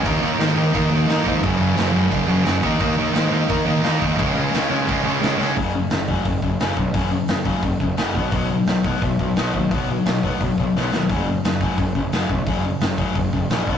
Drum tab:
CC |x-x-x-x-|x-x-x-x-|x-x-x-x-|x-x-x-x-|
HH |--------|--------|--------|--------|
SD |--o---o-|--o---o-|--o---o-|--o---oo|
BD |o---o--o|o---o--o|o---o--o|o---o---|

CC |--------|--------|--------|--------|
HH |o-o-o-o-|o-o-o-o-|o-o-o-o-|o-o-o---|
SD |--o---o-|--o---o-|--o---o-|--o---oo|
BD |o--ooo-o|o--ooo-o|o--ooo-o|o--ooo--|

CC |--------|--------|
HH |o-o-o-o-|o-o-o-o-|
SD |--o---o-|--o---o-|
BD |o--ooo-o|o--ooo-o|